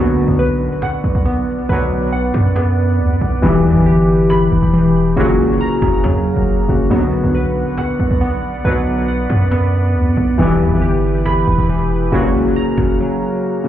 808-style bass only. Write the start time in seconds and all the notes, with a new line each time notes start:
Already playing: B1
0.28 B1
1.04 B1
1.15 B1
1.69 B1
2.34 F#2
3.00 D2
3.10 F#2
3.21 B1
3.43 E1
3.65 E2
3.76 G1
4.52 E1
4.63 E1
5.17 F#1
5.39 C#2
5.50 F#1
5.82 F#1
6.04 F#2
6.37 F#1
6.69 F#1
6.91 B1
7.23 B1
8.00 B1
8.10 B1
8.65 B1
9.30 F#2
9.95 D2
10.06 F#2
10.17 B1
10.39 E1
10.60 E2
10.71 G1
11.47 E1
11.58 E1
12.13 F#1
12.34 C#2
12.45 F#1
12.78 F#1